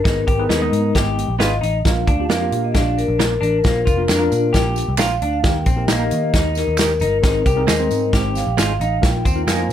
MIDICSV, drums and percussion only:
0, 0, Header, 1, 2, 480
1, 0, Start_track
1, 0, Tempo, 449102
1, 58, Time_signature, 4, 2, 24, 8
1, 10397, End_track
2, 0, Start_track
2, 0, Title_t, "Drums"
2, 57, Note_on_c, 9, 36, 108
2, 60, Note_on_c, 9, 42, 85
2, 62, Note_on_c, 9, 38, 86
2, 163, Note_off_c, 9, 36, 0
2, 167, Note_off_c, 9, 42, 0
2, 169, Note_off_c, 9, 38, 0
2, 295, Note_on_c, 9, 36, 75
2, 295, Note_on_c, 9, 42, 60
2, 402, Note_off_c, 9, 36, 0
2, 402, Note_off_c, 9, 42, 0
2, 536, Note_on_c, 9, 38, 94
2, 544, Note_on_c, 9, 42, 81
2, 643, Note_off_c, 9, 38, 0
2, 651, Note_off_c, 9, 42, 0
2, 779, Note_on_c, 9, 42, 66
2, 886, Note_off_c, 9, 42, 0
2, 1015, Note_on_c, 9, 36, 66
2, 1017, Note_on_c, 9, 42, 77
2, 1023, Note_on_c, 9, 38, 94
2, 1122, Note_off_c, 9, 36, 0
2, 1124, Note_off_c, 9, 42, 0
2, 1130, Note_off_c, 9, 38, 0
2, 1267, Note_on_c, 9, 42, 68
2, 1374, Note_off_c, 9, 42, 0
2, 1498, Note_on_c, 9, 38, 104
2, 1503, Note_on_c, 9, 42, 93
2, 1605, Note_off_c, 9, 38, 0
2, 1610, Note_off_c, 9, 42, 0
2, 1744, Note_on_c, 9, 42, 70
2, 1851, Note_off_c, 9, 42, 0
2, 1979, Note_on_c, 9, 36, 96
2, 1980, Note_on_c, 9, 42, 85
2, 1982, Note_on_c, 9, 38, 87
2, 2086, Note_off_c, 9, 36, 0
2, 2087, Note_off_c, 9, 42, 0
2, 2089, Note_off_c, 9, 38, 0
2, 2216, Note_on_c, 9, 42, 62
2, 2217, Note_on_c, 9, 36, 84
2, 2323, Note_off_c, 9, 42, 0
2, 2324, Note_off_c, 9, 36, 0
2, 2456, Note_on_c, 9, 38, 98
2, 2464, Note_on_c, 9, 42, 80
2, 2563, Note_off_c, 9, 38, 0
2, 2571, Note_off_c, 9, 42, 0
2, 2696, Note_on_c, 9, 42, 63
2, 2802, Note_off_c, 9, 42, 0
2, 2933, Note_on_c, 9, 42, 84
2, 2935, Note_on_c, 9, 36, 75
2, 2939, Note_on_c, 9, 38, 92
2, 3040, Note_off_c, 9, 42, 0
2, 3042, Note_off_c, 9, 36, 0
2, 3046, Note_off_c, 9, 38, 0
2, 3188, Note_on_c, 9, 42, 73
2, 3295, Note_off_c, 9, 42, 0
2, 3417, Note_on_c, 9, 38, 111
2, 3423, Note_on_c, 9, 42, 84
2, 3524, Note_off_c, 9, 38, 0
2, 3530, Note_off_c, 9, 42, 0
2, 3665, Note_on_c, 9, 42, 62
2, 3772, Note_off_c, 9, 42, 0
2, 3888, Note_on_c, 9, 54, 38
2, 3898, Note_on_c, 9, 36, 103
2, 3898, Note_on_c, 9, 42, 81
2, 3900, Note_on_c, 9, 38, 94
2, 3995, Note_off_c, 9, 54, 0
2, 4005, Note_off_c, 9, 36, 0
2, 4005, Note_off_c, 9, 42, 0
2, 4007, Note_off_c, 9, 38, 0
2, 4134, Note_on_c, 9, 42, 63
2, 4136, Note_on_c, 9, 36, 76
2, 4137, Note_on_c, 9, 54, 47
2, 4241, Note_off_c, 9, 42, 0
2, 4243, Note_off_c, 9, 36, 0
2, 4244, Note_off_c, 9, 54, 0
2, 4373, Note_on_c, 9, 38, 96
2, 4375, Note_on_c, 9, 39, 67
2, 4375, Note_on_c, 9, 54, 72
2, 4381, Note_on_c, 9, 42, 79
2, 4480, Note_off_c, 9, 38, 0
2, 4481, Note_off_c, 9, 39, 0
2, 4481, Note_off_c, 9, 54, 0
2, 4488, Note_off_c, 9, 42, 0
2, 4614, Note_on_c, 9, 54, 50
2, 4619, Note_on_c, 9, 42, 61
2, 4721, Note_off_c, 9, 54, 0
2, 4726, Note_off_c, 9, 42, 0
2, 4850, Note_on_c, 9, 42, 73
2, 4854, Note_on_c, 9, 36, 70
2, 4855, Note_on_c, 9, 54, 48
2, 4856, Note_on_c, 9, 38, 94
2, 4957, Note_off_c, 9, 42, 0
2, 4961, Note_off_c, 9, 36, 0
2, 4962, Note_off_c, 9, 54, 0
2, 4963, Note_off_c, 9, 38, 0
2, 5087, Note_on_c, 9, 54, 53
2, 5104, Note_on_c, 9, 42, 79
2, 5194, Note_off_c, 9, 54, 0
2, 5211, Note_off_c, 9, 42, 0
2, 5323, Note_on_c, 9, 39, 81
2, 5323, Note_on_c, 9, 54, 83
2, 5337, Note_on_c, 9, 38, 108
2, 5342, Note_on_c, 9, 42, 90
2, 5430, Note_off_c, 9, 39, 0
2, 5430, Note_off_c, 9, 54, 0
2, 5444, Note_off_c, 9, 38, 0
2, 5449, Note_off_c, 9, 42, 0
2, 5576, Note_on_c, 9, 42, 61
2, 5682, Note_off_c, 9, 42, 0
2, 5811, Note_on_c, 9, 42, 79
2, 5813, Note_on_c, 9, 38, 96
2, 5815, Note_on_c, 9, 54, 33
2, 5816, Note_on_c, 9, 36, 108
2, 5918, Note_off_c, 9, 42, 0
2, 5920, Note_off_c, 9, 38, 0
2, 5922, Note_off_c, 9, 54, 0
2, 5923, Note_off_c, 9, 36, 0
2, 6047, Note_on_c, 9, 42, 62
2, 6053, Note_on_c, 9, 36, 87
2, 6055, Note_on_c, 9, 54, 43
2, 6154, Note_off_c, 9, 42, 0
2, 6160, Note_off_c, 9, 36, 0
2, 6162, Note_off_c, 9, 54, 0
2, 6285, Note_on_c, 9, 38, 100
2, 6294, Note_on_c, 9, 42, 87
2, 6296, Note_on_c, 9, 39, 78
2, 6296, Note_on_c, 9, 54, 69
2, 6392, Note_off_c, 9, 38, 0
2, 6400, Note_off_c, 9, 42, 0
2, 6403, Note_off_c, 9, 39, 0
2, 6403, Note_off_c, 9, 54, 0
2, 6529, Note_on_c, 9, 42, 68
2, 6538, Note_on_c, 9, 54, 49
2, 6636, Note_off_c, 9, 42, 0
2, 6645, Note_off_c, 9, 54, 0
2, 6770, Note_on_c, 9, 42, 87
2, 6773, Note_on_c, 9, 36, 76
2, 6773, Note_on_c, 9, 54, 51
2, 6776, Note_on_c, 9, 38, 84
2, 6877, Note_off_c, 9, 42, 0
2, 6880, Note_off_c, 9, 36, 0
2, 6880, Note_off_c, 9, 54, 0
2, 6883, Note_off_c, 9, 38, 0
2, 7002, Note_on_c, 9, 54, 54
2, 7021, Note_on_c, 9, 38, 35
2, 7025, Note_on_c, 9, 42, 72
2, 7109, Note_off_c, 9, 54, 0
2, 7128, Note_off_c, 9, 38, 0
2, 7132, Note_off_c, 9, 42, 0
2, 7243, Note_on_c, 9, 39, 81
2, 7243, Note_on_c, 9, 54, 84
2, 7259, Note_on_c, 9, 38, 111
2, 7264, Note_on_c, 9, 42, 96
2, 7350, Note_off_c, 9, 39, 0
2, 7350, Note_off_c, 9, 54, 0
2, 7366, Note_off_c, 9, 38, 0
2, 7371, Note_off_c, 9, 42, 0
2, 7478, Note_on_c, 9, 54, 31
2, 7498, Note_on_c, 9, 42, 69
2, 7585, Note_off_c, 9, 54, 0
2, 7605, Note_off_c, 9, 42, 0
2, 7730, Note_on_c, 9, 54, 33
2, 7731, Note_on_c, 9, 42, 84
2, 7733, Note_on_c, 9, 38, 91
2, 7734, Note_on_c, 9, 36, 110
2, 7836, Note_off_c, 9, 54, 0
2, 7838, Note_off_c, 9, 42, 0
2, 7839, Note_off_c, 9, 38, 0
2, 7841, Note_off_c, 9, 36, 0
2, 7969, Note_on_c, 9, 42, 58
2, 7972, Note_on_c, 9, 36, 79
2, 7977, Note_on_c, 9, 54, 44
2, 8076, Note_off_c, 9, 42, 0
2, 8079, Note_off_c, 9, 36, 0
2, 8084, Note_off_c, 9, 54, 0
2, 8211, Note_on_c, 9, 38, 106
2, 8219, Note_on_c, 9, 39, 78
2, 8219, Note_on_c, 9, 42, 82
2, 8219, Note_on_c, 9, 54, 81
2, 8318, Note_off_c, 9, 38, 0
2, 8326, Note_off_c, 9, 39, 0
2, 8326, Note_off_c, 9, 42, 0
2, 8326, Note_off_c, 9, 54, 0
2, 8451, Note_on_c, 9, 54, 51
2, 8455, Note_on_c, 9, 42, 60
2, 8558, Note_off_c, 9, 54, 0
2, 8562, Note_off_c, 9, 42, 0
2, 8688, Note_on_c, 9, 42, 80
2, 8691, Note_on_c, 9, 36, 75
2, 8695, Note_on_c, 9, 38, 83
2, 8696, Note_on_c, 9, 54, 50
2, 8795, Note_off_c, 9, 42, 0
2, 8797, Note_off_c, 9, 36, 0
2, 8802, Note_off_c, 9, 38, 0
2, 8803, Note_off_c, 9, 54, 0
2, 8928, Note_on_c, 9, 54, 52
2, 8943, Note_on_c, 9, 38, 36
2, 8947, Note_on_c, 9, 42, 68
2, 9035, Note_off_c, 9, 54, 0
2, 9050, Note_off_c, 9, 38, 0
2, 9054, Note_off_c, 9, 42, 0
2, 9179, Note_on_c, 9, 38, 109
2, 9182, Note_on_c, 9, 39, 90
2, 9182, Note_on_c, 9, 54, 85
2, 9184, Note_on_c, 9, 42, 89
2, 9286, Note_off_c, 9, 38, 0
2, 9289, Note_off_c, 9, 39, 0
2, 9289, Note_off_c, 9, 54, 0
2, 9291, Note_off_c, 9, 42, 0
2, 9415, Note_on_c, 9, 42, 60
2, 9421, Note_on_c, 9, 54, 29
2, 9522, Note_off_c, 9, 42, 0
2, 9528, Note_off_c, 9, 54, 0
2, 9650, Note_on_c, 9, 42, 83
2, 9652, Note_on_c, 9, 36, 109
2, 9652, Note_on_c, 9, 38, 89
2, 9661, Note_on_c, 9, 54, 36
2, 9757, Note_off_c, 9, 42, 0
2, 9759, Note_off_c, 9, 36, 0
2, 9759, Note_off_c, 9, 38, 0
2, 9768, Note_off_c, 9, 54, 0
2, 9891, Note_on_c, 9, 36, 78
2, 9891, Note_on_c, 9, 42, 63
2, 9906, Note_on_c, 9, 54, 47
2, 9998, Note_off_c, 9, 36, 0
2, 9998, Note_off_c, 9, 42, 0
2, 10013, Note_off_c, 9, 54, 0
2, 10131, Note_on_c, 9, 38, 89
2, 10135, Note_on_c, 9, 39, 82
2, 10135, Note_on_c, 9, 54, 73
2, 10139, Note_on_c, 9, 42, 81
2, 10237, Note_off_c, 9, 38, 0
2, 10242, Note_off_c, 9, 39, 0
2, 10242, Note_off_c, 9, 54, 0
2, 10246, Note_off_c, 9, 42, 0
2, 10397, End_track
0, 0, End_of_file